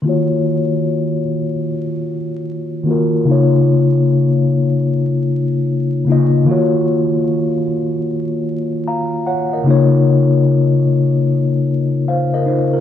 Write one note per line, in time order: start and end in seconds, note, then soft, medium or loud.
0.02 1.16 D#3 medium
0.02 1.17 A#3 medium
0.02 1.18 F4 medium
0.08 1.19 F#4 medium
0.08 1.19 C#5 medium
2.83 3.15 D#3 medium
2.83 3.16 A#3 medium
2.83 3.17 F4 medium
2.89 3.18 F#4 medium
2.89 3.19 A#4 medium
3.24 4.37 C#3 medium
3.24 4.38 A#3 medium
3.24 4.39 D#4 medium
3.30 4.40 F4 medium
3.30 4.40 C#5 medium
6.05 6.36 C#3 medium
6.05 6.37 A#3 medium
6.05 6.38 D#4 medium
6.10 6.39 F4 medium
6.10 6.40 D#5 medium
6.45 7.57 D#3 medium
6.45 7.58 A#3 medium
6.45 7.59 F4 medium
6.50 7.60 F#4 medium
6.50 7.60 C#5 medium
8.88 9.25 F5 medium
8.88 9.25 A#5 medium
9.27 9.51 C#5 medium
9.27 9.51 F#5 medium
9.53 9.91 A#4 soft
9.53 9.90 D#5 medium
9.64 10.77 C#3 medium
9.64 10.78 A#3 medium
9.64 10.78 D#4 medium
9.69 10.79 F4 medium
9.69 10.80 C#5 medium
12.08 12.32 C5 medium
12.08 12.32 F5 medium
12.34 12.46 A#4 medium
12.34 12.46 D#5 medium
12.46 12.80 D#4 medium
12.46 12.72 F4 medium
12.46 12.72 C5 medium
12.73 12.80 F4 soft
12.73 12.80 A#4 medium